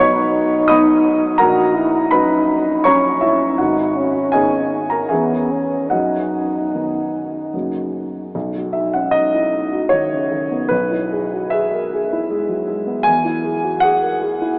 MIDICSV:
0, 0, Header, 1, 3, 480
1, 0, Start_track
1, 0, Key_signature, 5, "major"
1, 0, Tempo, 712589
1, 944, Time_signature, 3, 2, 24, 8
1, 1433, Tempo, 744417
1, 3353, Tempo, 803213
1, 7193, Tempo, 768246
1, 9103, End_track
2, 0, Start_track
2, 0, Title_t, "Grand piano"
2, 0, Program_c, 0, 0
2, 0, Control_c, 0, 64, 127
2, 0, Note_on_c, 0, 35, 62
2, 0, Note_on_c, 0, 54, 50
2, 0, Note_on_c, 0, 59, 48
2, 0, Note_on_c, 0, 71, 67
2, 0, Note_on_c, 0, 73, 78
2, 0, Note_on_c, 0, 78, 72
2, 0, Note_on_c, 0, 83, 92
2, 0, Note_on_c, 0, 85, 87
2, 3, Note_on_c, 0, 63, 52
2, 439, Note_off_c, 0, 73, 0
2, 444, Note_off_c, 0, 59, 0
2, 445, Note_off_c, 0, 54, 0
2, 446, Note_off_c, 0, 63, 0
2, 456, Note_on_c, 0, 87, 84
2, 461, Note_off_c, 0, 85, 0
2, 465, Note_off_c, 0, 83, 0
2, 465, Note_on_c, 0, 75, 71
2, 465, Note_on_c, 0, 83, 65
2, 473, Note_on_c, 0, 54, 45
2, 476, Note_on_c, 0, 59, 49
2, 480, Note_on_c, 0, 63, 52
2, 915, Note_off_c, 0, 75, 0
2, 915, Note_off_c, 0, 83, 0
2, 919, Note_off_c, 0, 54, 0
2, 921, Note_off_c, 0, 59, 0
2, 923, Note_off_c, 0, 63, 0
2, 930, Note_on_c, 0, 82, 88
2, 935, Note_off_c, 0, 78, 0
2, 935, Note_on_c, 0, 78, 64
2, 938, Note_off_c, 0, 87, 0
2, 938, Note_on_c, 0, 70, 68
2, 947, Note_on_c, 0, 34, 63
2, 956, Control_c, 0, 64, 0
2, 959, Note_off_c, 0, 35, 0
2, 962, Note_off_c, 0, 71, 0
2, 1065, Control_c, 0, 64, 127
2, 1401, Note_off_c, 0, 78, 0
2, 1403, Note_off_c, 0, 70, 0
2, 1419, Note_on_c, 0, 83, 86
2, 1420, Note_off_c, 0, 34, 0
2, 1426, Note_off_c, 0, 82, 0
2, 1428, Note_on_c, 0, 71, 64
2, 1435, Note_on_c, 0, 54, 49
2, 1439, Note_on_c, 0, 61, 46
2, 1878, Note_off_c, 0, 71, 0
2, 1882, Note_off_c, 0, 54, 0
2, 1884, Note_off_c, 0, 61, 0
2, 1892, Note_on_c, 0, 85, 83
2, 1900, Note_off_c, 0, 83, 0
2, 1900, Note_on_c, 0, 73, 66
2, 1900, Note_on_c, 0, 82, 62
2, 1907, Note_on_c, 0, 54, 45
2, 1910, Note_on_c, 0, 61, 46
2, 2125, Note_off_c, 0, 73, 0
2, 2125, Note_off_c, 0, 82, 0
2, 2130, Note_on_c, 0, 76, 69
2, 2137, Note_on_c, 0, 64, 60
2, 2138, Note_off_c, 0, 85, 0
2, 2359, Note_off_c, 0, 54, 0
2, 2361, Note_off_c, 0, 61, 0
2, 2364, Note_off_c, 0, 64, 0
2, 2370, Note_on_c, 0, 78, 64
2, 2376, Note_on_c, 0, 66, 58
2, 2377, Note_off_c, 0, 76, 0
2, 2383, Note_on_c, 0, 32, 59
2, 2394, Control_c, 0, 64, 0
2, 2481, Control_c, 0, 64, 127
2, 2834, Note_off_c, 0, 66, 0
2, 2846, Note_on_c, 0, 80, 80
2, 2848, Note_off_c, 0, 32, 0
2, 2855, Note_on_c, 0, 68, 54
2, 2856, Note_off_c, 0, 78, 0
2, 2856, Note_on_c, 0, 75, 55
2, 2863, Note_on_c, 0, 51, 43
2, 2866, Note_on_c, 0, 59, 39
2, 2868, Note_on_c, 0, 63, 47
2, 3198, Note_off_c, 0, 68, 0
2, 3199, Note_off_c, 0, 75, 0
2, 3219, Note_off_c, 0, 80, 0
2, 3220, Note_on_c, 0, 82, 62
2, 3232, Note_on_c, 0, 70, 50
2, 3327, Note_off_c, 0, 51, 0
2, 3328, Note_off_c, 0, 59, 0
2, 3330, Note_off_c, 0, 63, 0
2, 3342, Note_on_c, 0, 80, 62
2, 3346, Note_off_c, 0, 70, 0
2, 3348, Note_on_c, 0, 68, 53
2, 3348, Note_on_c, 0, 76, 47
2, 3349, Note_off_c, 0, 82, 0
2, 3356, Note_on_c, 0, 52, 31
2, 3358, Note_on_c, 0, 40, 48
2, 3362, Note_on_c, 0, 59, 35
2, 3364, Note_on_c, 0, 61, 34
2, 3365, Control_c, 0, 64, 0
2, 3481, Control_c, 0, 64, 127
2, 3809, Note_off_c, 0, 68, 0
2, 3809, Note_off_c, 0, 76, 0
2, 3813, Note_off_c, 0, 52, 0
2, 3816, Note_off_c, 0, 59, 0
2, 3817, Note_off_c, 0, 61, 0
2, 3824, Note_off_c, 0, 40, 0
2, 3828, Note_on_c, 0, 78, 59
2, 3831, Note_off_c, 0, 80, 0
2, 3835, Note_on_c, 0, 75, 47
2, 3836, Note_on_c, 0, 66, 48
2, 3843, Note_on_c, 0, 42, 46
2, 3847, Control_c, 0, 64, 0
2, 3963, Control_c, 0, 64, 127
2, 4311, Note_off_c, 0, 42, 0
2, 4333, Note_on_c, 0, 51, 36
2, 4334, Note_on_c, 0, 59, 36
2, 4337, Note_on_c, 0, 63, 39
2, 4780, Note_off_c, 0, 66, 0
2, 4780, Note_off_c, 0, 75, 0
2, 4786, Note_off_c, 0, 51, 0
2, 4786, Note_off_c, 0, 59, 0
2, 4788, Note_off_c, 0, 63, 0
2, 4800, Note_off_c, 0, 78, 0
2, 4807, Note_on_c, 0, 42, 42
2, 4808, Note_on_c, 0, 49, 31
2, 4813, Note_on_c, 0, 58, 33
2, 4815, Note_on_c, 0, 66, 34
2, 4817, Control_c, 0, 64, 0
2, 4904, Control_c, 0, 64, 127
2, 5266, Note_off_c, 0, 49, 0
2, 5268, Note_off_c, 0, 58, 0
2, 5270, Note_off_c, 0, 66, 0
2, 5275, Note_off_c, 0, 42, 0
2, 5292, Note_on_c, 0, 35, 58
2, 5298, Control_c, 0, 64, 0
2, 5387, Control_c, 0, 64, 127
2, 5419, Note_on_c, 0, 66, 41
2, 5518, Note_on_c, 0, 76, 64
2, 5532, Note_on_c, 0, 63, 36
2, 5608, Note_off_c, 0, 66, 0
2, 5642, Note_on_c, 0, 78, 64
2, 5644, Note_off_c, 0, 76, 0
2, 5650, Note_on_c, 0, 61, 39
2, 5721, Note_off_c, 0, 63, 0
2, 5748, Note_on_c, 0, 75, 85
2, 5762, Note_on_c, 0, 63, 50
2, 5763, Note_off_c, 0, 78, 0
2, 5767, Note_off_c, 0, 61, 0
2, 5884, Note_on_c, 0, 64, 40
2, 5950, Note_off_c, 0, 63, 0
2, 5998, Note_on_c, 0, 63, 41
2, 5999, Note_off_c, 0, 64, 0
2, 6115, Note_on_c, 0, 66, 45
2, 6184, Note_off_c, 0, 63, 0
2, 6213, Note_on_c, 0, 73, 80
2, 6221, Note_off_c, 0, 75, 0
2, 6230, Note_on_c, 0, 51, 44
2, 6301, Note_off_c, 0, 66, 0
2, 6355, Note_on_c, 0, 49, 38
2, 6417, Note_off_c, 0, 51, 0
2, 6467, Note_on_c, 0, 51, 47
2, 6468, Note_off_c, 0, 49, 0
2, 6586, Note_on_c, 0, 59, 42
2, 6654, Note_off_c, 0, 51, 0
2, 6678, Note_off_c, 0, 35, 0
2, 6688, Note_on_c, 0, 71, 78
2, 6692, Note_off_c, 0, 73, 0
2, 6702, Note_off_c, 0, 59, 0
2, 6702, Note_on_c, 0, 35, 55
2, 6712, Control_c, 0, 64, 0
2, 6822, Note_on_c, 0, 64, 47
2, 6826, Control_c, 0, 64, 127
2, 6943, Note_on_c, 0, 68, 47
2, 7022, Note_off_c, 0, 64, 0
2, 7073, Note_on_c, 0, 66, 44
2, 7144, Note_off_c, 0, 68, 0
2, 7176, Note_on_c, 0, 76, 83
2, 7188, Note_off_c, 0, 71, 0
2, 7190, Note_on_c, 0, 68, 51
2, 7195, Note_off_c, 0, 66, 0
2, 7319, Note_on_c, 0, 70, 48
2, 7391, Note_off_c, 0, 68, 0
2, 7442, Note_off_c, 0, 70, 0
2, 7446, Note_on_c, 0, 68, 49
2, 7565, Note_on_c, 0, 64, 48
2, 7637, Note_off_c, 0, 68, 0
2, 7676, Note_on_c, 0, 56, 52
2, 7755, Note_off_c, 0, 64, 0
2, 7791, Note_on_c, 0, 54, 42
2, 7869, Note_off_c, 0, 56, 0
2, 7910, Note_off_c, 0, 76, 0
2, 7910, Note_on_c, 0, 56, 52
2, 7914, Note_off_c, 0, 54, 0
2, 8026, Note_on_c, 0, 59, 46
2, 8104, Note_off_c, 0, 56, 0
2, 8131, Note_on_c, 0, 80, 98
2, 8132, Note_off_c, 0, 35, 0
2, 8148, Note_on_c, 0, 40, 65
2, 8150, Note_off_c, 0, 59, 0
2, 8167, Control_c, 0, 64, 0
2, 8258, Control_c, 0, 64, 127
2, 8267, Note_on_c, 0, 64, 53
2, 8381, Note_on_c, 0, 68, 43
2, 8462, Note_off_c, 0, 64, 0
2, 8504, Note_on_c, 0, 66, 51
2, 8579, Note_off_c, 0, 68, 0
2, 8613, Note_on_c, 0, 78, 97
2, 8620, Note_off_c, 0, 80, 0
2, 8628, Note_off_c, 0, 66, 0
2, 8630, Note_on_c, 0, 68, 62
2, 8749, Note_on_c, 0, 70, 44
2, 8823, Note_off_c, 0, 68, 0
2, 8868, Note_on_c, 0, 68, 56
2, 8871, Note_off_c, 0, 70, 0
2, 8996, Note_on_c, 0, 64, 52
2, 9064, Note_off_c, 0, 68, 0
2, 9087, Note_off_c, 0, 40, 0
2, 9103, Note_off_c, 0, 64, 0
2, 9103, Note_off_c, 0, 78, 0
2, 9103, End_track
3, 0, Start_track
3, 0, Title_t, "French horn"
3, 0, Program_c, 1, 60
3, 0, Note_on_c, 1, 63, 77
3, 942, Note_off_c, 1, 63, 0
3, 946, Note_on_c, 1, 66, 66
3, 1185, Note_on_c, 1, 64, 65
3, 1196, Note_off_c, 1, 66, 0
3, 1429, Note_on_c, 1, 63, 62
3, 1439, Note_off_c, 1, 64, 0
3, 1905, Note_on_c, 1, 61, 57
3, 1915, Note_off_c, 1, 63, 0
3, 2370, Note_off_c, 1, 61, 0
3, 2374, Note_on_c, 1, 63, 65
3, 2618, Note_on_c, 1, 61, 58
3, 2628, Note_off_c, 1, 63, 0
3, 3173, Note_off_c, 1, 61, 0
3, 3352, Note_on_c, 1, 59, 51
3, 3595, Note_on_c, 1, 61, 49
3, 3604, Note_off_c, 1, 59, 0
3, 3829, Note_on_c, 1, 63, 53
3, 3838, Note_off_c, 1, 61, 0
3, 5042, Note_off_c, 1, 63, 0
3, 9103, End_track
0, 0, End_of_file